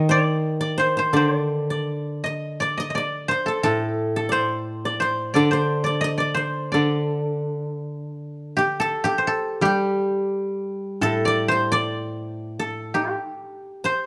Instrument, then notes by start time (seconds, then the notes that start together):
koto
Already playing: D#3 G4 A4 D#5
0.09 D5
0.61 D5
0.78 C5
0.97 C5
1.13 D3 C5 D5
1.36 D5
1.70 D5
2.24 D#5
2.60 D5
2.78 D#5
2.90 D#5
2.95 D5
3.28 C5
3.46 A4
3.63 A2 A4
4.16 A4
4.29 C5 D5
4.85 D5
5.00 C5
5.34 D3 D5
5.51 C5
5.84 D5
6.01 D#5
6.18 D5
6.34 C5
6.72 D3 D5
8.57 G4
8.80 A4
9.04 G4
9.18 C5
9.27 A4
9.61 G3 G4
11.01 A2 A4
11.25 D5
11.48 C5
11.72 D5
12.59 A4
12.94 G4
13.84 C5